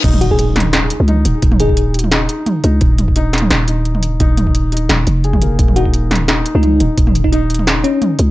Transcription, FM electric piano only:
0, 0, Header, 1, 2, 480
1, 0, Start_track
1, 0, Tempo, 346821
1, 54, Time_signature, 4, 2, 24, 8
1, 11500, End_track
2, 0, Start_track
2, 0, Title_t, "FM electric piano"
2, 0, Program_c, 0, 5
2, 290, Note_on_c, 0, 66, 89
2, 394, Note_off_c, 0, 66, 0
2, 430, Note_on_c, 0, 68, 85
2, 497, Note_off_c, 0, 68, 0
2, 539, Note_on_c, 0, 68, 73
2, 618, Note_off_c, 0, 68, 0
2, 2215, Note_on_c, 0, 68, 88
2, 2890, Note_off_c, 0, 68, 0
2, 7971, Note_on_c, 0, 66, 86
2, 8075, Note_off_c, 0, 66, 0
2, 9068, Note_on_c, 0, 63, 95
2, 9417, Note_off_c, 0, 63, 0
2, 10023, Note_on_c, 0, 63, 90
2, 10094, Note_off_c, 0, 63, 0
2, 10132, Note_on_c, 0, 63, 73
2, 10215, Note_off_c, 0, 63, 0
2, 10845, Note_on_c, 0, 61, 95
2, 11217, Note_off_c, 0, 61, 0
2, 11500, End_track
0, 0, End_of_file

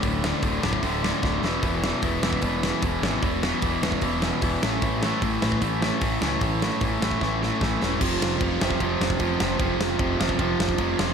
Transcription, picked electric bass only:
0, 0, Header, 1, 2, 480
1, 0, Start_track
1, 0, Tempo, 398142
1, 46, Time_signature, 4, 2, 24, 8
1, 13426, End_track
2, 0, Start_track
2, 0, Title_t, "Picked electric bass"
2, 0, Program_c, 0, 34
2, 39, Note_on_c, 0, 26, 99
2, 388, Note_off_c, 0, 26, 0
2, 515, Note_on_c, 0, 26, 78
2, 693, Note_off_c, 0, 26, 0
2, 767, Note_on_c, 0, 26, 86
2, 941, Note_off_c, 0, 26, 0
2, 997, Note_on_c, 0, 26, 80
2, 1348, Note_off_c, 0, 26, 0
2, 1482, Note_on_c, 0, 26, 78
2, 1658, Note_off_c, 0, 26, 0
2, 1716, Note_on_c, 0, 28, 82
2, 1895, Note_off_c, 0, 28, 0
2, 1969, Note_on_c, 0, 28, 97
2, 2317, Note_off_c, 0, 28, 0
2, 2447, Note_on_c, 0, 28, 79
2, 2622, Note_off_c, 0, 28, 0
2, 2680, Note_on_c, 0, 28, 89
2, 2858, Note_off_c, 0, 28, 0
2, 2925, Note_on_c, 0, 28, 81
2, 3275, Note_off_c, 0, 28, 0
2, 3407, Note_on_c, 0, 28, 83
2, 3583, Note_off_c, 0, 28, 0
2, 3643, Note_on_c, 0, 32, 88
2, 3821, Note_off_c, 0, 32, 0
2, 3888, Note_on_c, 0, 28, 94
2, 4238, Note_off_c, 0, 28, 0
2, 4371, Note_on_c, 0, 28, 80
2, 4547, Note_off_c, 0, 28, 0
2, 4605, Note_on_c, 0, 28, 82
2, 4783, Note_off_c, 0, 28, 0
2, 4843, Note_on_c, 0, 28, 82
2, 5196, Note_off_c, 0, 28, 0
2, 5329, Note_on_c, 0, 28, 83
2, 5507, Note_off_c, 0, 28, 0
2, 5584, Note_on_c, 0, 33, 90
2, 5756, Note_off_c, 0, 33, 0
2, 5811, Note_on_c, 0, 33, 91
2, 6162, Note_off_c, 0, 33, 0
2, 6292, Note_on_c, 0, 33, 83
2, 6469, Note_off_c, 0, 33, 0
2, 6544, Note_on_c, 0, 33, 87
2, 6717, Note_off_c, 0, 33, 0
2, 6771, Note_on_c, 0, 33, 91
2, 7122, Note_off_c, 0, 33, 0
2, 7254, Note_on_c, 0, 33, 86
2, 7431, Note_off_c, 0, 33, 0
2, 7496, Note_on_c, 0, 37, 87
2, 7673, Note_off_c, 0, 37, 0
2, 7729, Note_on_c, 0, 33, 96
2, 8081, Note_off_c, 0, 33, 0
2, 8211, Note_on_c, 0, 33, 85
2, 8390, Note_off_c, 0, 33, 0
2, 8459, Note_on_c, 0, 33, 84
2, 8635, Note_off_c, 0, 33, 0
2, 8697, Note_on_c, 0, 33, 88
2, 9046, Note_off_c, 0, 33, 0
2, 9176, Note_on_c, 0, 33, 80
2, 9352, Note_off_c, 0, 33, 0
2, 9430, Note_on_c, 0, 28, 82
2, 9601, Note_off_c, 0, 28, 0
2, 9657, Note_on_c, 0, 29, 97
2, 9843, Note_off_c, 0, 29, 0
2, 9897, Note_on_c, 0, 29, 87
2, 10083, Note_off_c, 0, 29, 0
2, 10133, Note_on_c, 0, 29, 86
2, 10320, Note_off_c, 0, 29, 0
2, 10386, Note_on_c, 0, 29, 91
2, 10568, Note_off_c, 0, 29, 0
2, 10616, Note_on_c, 0, 29, 89
2, 10802, Note_off_c, 0, 29, 0
2, 10857, Note_on_c, 0, 29, 94
2, 11042, Note_off_c, 0, 29, 0
2, 11088, Note_on_c, 0, 29, 90
2, 11276, Note_off_c, 0, 29, 0
2, 11342, Note_on_c, 0, 29, 100
2, 11524, Note_off_c, 0, 29, 0
2, 11566, Note_on_c, 0, 29, 103
2, 11753, Note_off_c, 0, 29, 0
2, 11802, Note_on_c, 0, 29, 86
2, 11991, Note_off_c, 0, 29, 0
2, 12053, Note_on_c, 0, 29, 85
2, 12237, Note_off_c, 0, 29, 0
2, 12296, Note_on_c, 0, 29, 95
2, 12478, Note_off_c, 0, 29, 0
2, 12521, Note_on_c, 0, 29, 94
2, 12708, Note_off_c, 0, 29, 0
2, 12773, Note_on_c, 0, 29, 93
2, 12955, Note_off_c, 0, 29, 0
2, 13002, Note_on_c, 0, 29, 87
2, 13188, Note_off_c, 0, 29, 0
2, 13247, Note_on_c, 0, 29, 97
2, 13426, Note_off_c, 0, 29, 0
2, 13426, End_track
0, 0, End_of_file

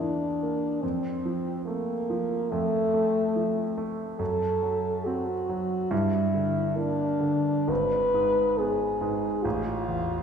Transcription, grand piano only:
0, 0, Header, 1, 2, 480
1, 0, Start_track
1, 0, Tempo, 835655
1, 476, Time_signature, 4, 2, 24, 8
1, 1441, Tempo, 849858
1, 3841, Tempo, 910470
1, 4801, Tempo, 862069
1, 5719, End_track
2, 0, Start_track
2, 0, Title_t, "Grand piano"
2, 0, Program_c, 0, 0
2, 0, Control_c, 0, 64, 127
2, 0, Note_on_c, 0, 40, 47
2, 0, Note_on_c, 0, 52, 39
2, 0, Note_on_c, 0, 58, 42
2, 7, Note_off_c, 0, 52, 0
2, 7, Note_on_c, 0, 52, 36
2, 148, Note_off_c, 0, 58, 0
2, 245, Note_on_c, 0, 58, 42
2, 384, Note_off_c, 0, 52, 0
2, 455, Note_off_c, 0, 40, 0
2, 479, Note_off_c, 0, 58, 0
2, 479, Note_on_c, 0, 41, 46
2, 485, Control_c, 0, 64, 0
2, 580, Control_c, 0, 64, 127
2, 720, Note_on_c, 0, 53, 38
2, 960, Note_on_c, 0, 57, 38
2, 1104, Note_off_c, 0, 53, 0
2, 1206, Note_on_c, 0, 53, 47
2, 1346, Note_off_c, 0, 57, 0
2, 1419, Note_off_c, 0, 41, 0
2, 1448, Note_on_c, 0, 41, 51
2, 1587, Note_off_c, 0, 53, 0
2, 1684, Note_on_c, 0, 57, 45
2, 1921, Note_on_c, 0, 53, 40
2, 2064, Note_off_c, 0, 57, 0
2, 2157, Note_on_c, 0, 57, 46
2, 2302, Note_off_c, 0, 53, 0
2, 2377, Note_off_c, 0, 41, 0
2, 2391, Note_on_c, 0, 42, 56
2, 2396, Note_off_c, 0, 57, 0
2, 2406, Control_c, 0, 64, 0
2, 2509, Control_c, 0, 64, 127
2, 2636, Note_on_c, 0, 54, 36
2, 2881, Note_on_c, 0, 60, 40
2, 3027, Note_off_c, 0, 54, 0
2, 3126, Note_on_c, 0, 54, 47
2, 3269, Note_off_c, 0, 60, 0
2, 3340, Note_off_c, 0, 42, 0
2, 3362, Note_on_c, 0, 43, 63
2, 3366, Note_off_c, 0, 54, 0
2, 3375, Control_c, 0, 64, 0
2, 3455, Control_c, 0, 64, 127
2, 3607, Note_on_c, 0, 50, 43
2, 3838, Note_on_c, 0, 58, 39
2, 3986, Note_off_c, 0, 50, 0
2, 4074, Note_on_c, 0, 50, 47
2, 4234, Note_off_c, 0, 58, 0
2, 4312, Note_off_c, 0, 43, 0
2, 4326, Note_on_c, 0, 32, 60
2, 4330, Note_off_c, 0, 50, 0
2, 4345, Control_c, 0, 64, 0
2, 4428, Control_c, 0, 64, 127
2, 4570, Note_on_c, 0, 44, 44
2, 4806, Note_on_c, 0, 59, 47
2, 4944, Note_off_c, 0, 44, 0
2, 5041, Note_on_c, 0, 44, 48
2, 5188, Note_off_c, 0, 59, 0
2, 5256, Note_off_c, 0, 32, 0
2, 5282, Note_off_c, 0, 44, 0
2, 5284, Note_on_c, 0, 33, 64
2, 5293, Control_c, 0, 64, 0
2, 5370, Control_c, 0, 64, 127
2, 5529, Note_on_c, 0, 40, 45
2, 5719, Note_off_c, 0, 33, 0
2, 5719, Note_off_c, 0, 40, 0
2, 5719, End_track
0, 0, End_of_file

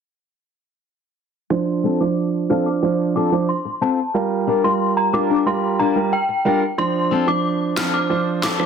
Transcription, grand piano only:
0, 0, Header, 1, 2, 480
1, 0, Start_track
1, 0, Key_signature, -1, "minor"
1, 0, Tempo, 659341
1, 1099, Time_signature, 4, 2, 24, 8
1, 6304, End_track
2, 0, Start_track
2, 0, Title_t, "Grand piano"
2, 0, Program_c, 0, 0
2, 1094, Note_on_c, 0, 53, 82
2, 1096, Note_on_c, 0, 62, 78
2, 1099, Note_on_c, 0, 72, 95
2, 1427, Note_off_c, 0, 53, 0
2, 1429, Note_off_c, 0, 62, 0
2, 1430, Note_off_c, 0, 72, 0
2, 1457, Note_on_c, 0, 53, 68
2, 1460, Note_on_c, 0, 62, 65
2, 1462, Note_on_c, 0, 72, 77
2, 1789, Note_off_c, 0, 53, 0
2, 1790, Note_off_c, 0, 62, 0
2, 1792, Note_off_c, 0, 72, 0
2, 1818, Note_on_c, 0, 53, 70
2, 1822, Note_on_c, 0, 62, 67
2, 1823, Note_on_c, 0, 72, 82
2, 2039, Note_off_c, 0, 53, 0
2, 2041, Note_off_c, 0, 62, 0
2, 2041, Note_off_c, 0, 72, 0
2, 2057, Note_on_c, 0, 53, 87
2, 2058, Note_on_c, 0, 62, 80
2, 2060, Note_on_c, 0, 72, 90
2, 2389, Note_off_c, 0, 53, 0
2, 2390, Note_off_c, 0, 62, 0
2, 2390, Note_off_c, 0, 72, 0
2, 2416, Note_on_c, 0, 53, 75
2, 2418, Note_on_c, 0, 62, 69
2, 2421, Note_on_c, 0, 72, 83
2, 2530, Note_off_c, 0, 53, 0
2, 2531, Note_off_c, 0, 62, 0
2, 2533, Note_off_c, 0, 72, 0
2, 3015, Note_on_c, 0, 55, 84
2, 3017, Note_on_c, 0, 65, 78
2, 3019, Note_on_c, 0, 70, 93
2, 3348, Note_off_c, 0, 55, 0
2, 3349, Note_off_c, 0, 65, 0
2, 3350, Note_off_c, 0, 70, 0
2, 3376, Note_on_c, 0, 55, 69
2, 3377, Note_on_c, 0, 65, 65
2, 3380, Note_on_c, 0, 70, 78
2, 3708, Note_off_c, 0, 55, 0
2, 3709, Note_off_c, 0, 65, 0
2, 3711, Note_off_c, 0, 70, 0
2, 3734, Note_on_c, 0, 55, 74
2, 3736, Note_on_c, 0, 65, 69
2, 3739, Note_on_c, 0, 70, 82
2, 3957, Note_off_c, 0, 55, 0
2, 3958, Note_off_c, 0, 65, 0
2, 3960, Note_off_c, 0, 70, 0
2, 3974, Note_on_c, 0, 55, 88
2, 3977, Note_on_c, 0, 65, 82
2, 3979, Note_on_c, 0, 70, 93
2, 4307, Note_off_c, 0, 55, 0
2, 4309, Note_off_c, 0, 65, 0
2, 4310, Note_off_c, 0, 70, 0
2, 4334, Note_on_c, 0, 55, 77
2, 4337, Note_on_c, 0, 65, 68
2, 4339, Note_on_c, 0, 70, 82
2, 4449, Note_off_c, 0, 55, 0
2, 4451, Note_off_c, 0, 65, 0
2, 4452, Note_off_c, 0, 70, 0
2, 4693, Note_on_c, 0, 55, 75
2, 4697, Note_on_c, 0, 65, 71
2, 4698, Note_on_c, 0, 70, 84
2, 4809, Note_off_c, 0, 55, 0
2, 4811, Note_off_c, 0, 65, 0
2, 4811, Note_off_c, 0, 70, 0
2, 4936, Note_on_c, 0, 53, 87
2, 4938, Note_on_c, 0, 62, 78
2, 4940, Note_on_c, 0, 72, 92
2, 5268, Note_off_c, 0, 53, 0
2, 5269, Note_off_c, 0, 62, 0
2, 5270, Note_off_c, 0, 72, 0
2, 5295, Note_on_c, 0, 53, 71
2, 5297, Note_on_c, 0, 62, 67
2, 5299, Note_on_c, 0, 72, 80
2, 5628, Note_off_c, 0, 53, 0
2, 5629, Note_off_c, 0, 62, 0
2, 5630, Note_off_c, 0, 72, 0
2, 5656, Note_on_c, 0, 53, 73
2, 5657, Note_on_c, 0, 62, 70
2, 5659, Note_on_c, 0, 72, 82
2, 5878, Note_off_c, 0, 53, 0
2, 5879, Note_off_c, 0, 62, 0
2, 5880, Note_off_c, 0, 72, 0
2, 5894, Note_on_c, 0, 53, 88
2, 5896, Note_on_c, 0, 62, 79
2, 5899, Note_on_c, 0, 72, 98
2, 6228, Note_off_c, 0, 53, 0
2, 6228, Note_off_c, 0, 62, 0
2, 6230, Note_off_c, 0, 72, 0
2, 6253, Note_on_c, 0, 53, 79
2, 6256, Note_on_c, 0, 62, 67
2, 6258, Note_on_c, 0, 72, 88
2, 6304, Note_off_c, 0, 53, 0
2, 6304, Note_off_c, 0, 62, 0
2, 6304, Note_off_c, 0, 72, 0
2, 6304, End_track
0, 0, End_of_file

